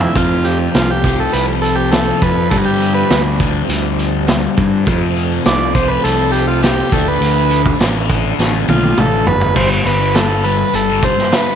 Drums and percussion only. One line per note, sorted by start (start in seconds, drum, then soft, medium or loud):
0.00 floor tom medium
0.15 kick loud
0.15 closed hi-hat medium
0.15 maracas loud
0.44 closed hi-hat medium
0.44 maracas medium
0.74 snare loud
0.74 closed hi-hat medium
0.74 maracas medium
1.04 kick medium
1.04 closed hi-hat medium
1.04 maracas medium
1.33 closed hi-hat loud
1.33 maracas medium
1.63 closed hi-hat medium
1.63 maracas medium
1.92 snare loud
1.92 closed hi-hat medium
1.92 maracas medium
2.22 kick medium
2.22 closed hi-hat medium
2.22 maracas medium
2.51 kick loud
2.51 closed hi-hat medium
2.51 maracas loud
2.80 closed hi-hat medium
2.80 maracas medium
3.10 snare loud
3.10 closed hi-hat loud
3.10 maracas medium
3.40 kick loud
3.40 closed hi-hat medium
3.40 maracas medium
3.69 closed hi-hat loud
3.69 maracas loud
3.99 closed hi-hat medium
3.99 maracas medium
4.27 snare loud
4.27 closed hi-hat loud
4.27 maracas medium
4.57 kick medium
4.57 closed hi-hat medium
4.57 maracas medium
4.86 kick loud
4.86 closed hi-hat medium
4.86 maracas loud
5.16 closed hi-hat medium
5.16 maracas medium
5.45 snare loud
5.45 closed hi-hat loud
5.45 maracas loud
5.75 kick medium
5.75 closed hi-hat medium
5.75 maracas medium
6.04 closed hi-hat loud
6.04 maracas loud
6.33 closed hi-hat medium
6.33 maracas medium
6.62 snare loud
6.62 closed hi-hat medium
6.62 maracas loud
6.91 kick loud
6.91 closed hi-hat medium
6.91 maracas medium
7.21 closed hi-hat medium
7.21 maracas loud
7.49 closed hi-hat medium
7.49 maracas medium
7.66 kick medium
7.80 snare loud
7.80 closed hi-hat loud
7.80 maracas loud
8.10 kick medium
8.10 closed hi-hat medium
8.10 maracas medium
8.39 snare medium
8.39 maracas loud
8.68 high tom medium
8.68 maracas medium
8.83 high tom medium
8.97 mid tom medium
8.97 maracas medium
9.26 floor tom loud
9.26 maracas medium
9.41 floor tom medium
9.56 kick loud
9.56 crash loud
9.56 maracas medium
9.85 closed hi-hat medium
9.85 maracas loud
10.15 snare loud
10.15 closed hi-hat loud
10.15 maracas medium
10.44 closed hi-hat medium
10.74 closed hi-hat medium
10.74 maracas medium
11.03 kick medium
11.03 closed hi-hat medium
11.03 maracas loud
11.18 snare soft
11.32 snare loud
11.32 closed hi-hat loud
11.32 maracas medium